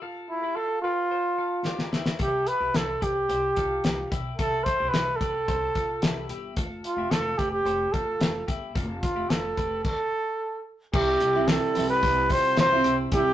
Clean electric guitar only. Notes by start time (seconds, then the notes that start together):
0.02 F4 A4
0.43 E4 G4
0.56 F4 A4
0.84 G4 B4
1.11 A4 C5
1.38 F4 A4
1.65 D4 G4
1.92 E4 G4
2.19 E4 A4
2.61 E4 G4
2.74 E4 A4
3.01 G4 B4
3.29 G4 C5
3.56 F4 A4
4.11 E4 G4
4.39 E4 A4
4.79 E4 G4
4.94 E4 A4
5.21 G4 B4
5.48 G4 C5
5.75 F4 A4
6.02 E4 G4
6.30 E4 G4
6.57 F4 A4
6.98 E4 G4
7.11 F4 A4
7.39 G4 B4
7.66 A4 C5
7.93 F4 A4
8.48 E4 G4
8.75 F4 A4
9.16 E4 G4
9.30 F4 A4
9.58 G4 B4
10.94 E4 A4
11.35 E4 G4
11.48 E4 A4
11.75 G4 B4
12.03 G4 C5
12.29 F4 A4
12.84 E4 G4
13.12 E4 A4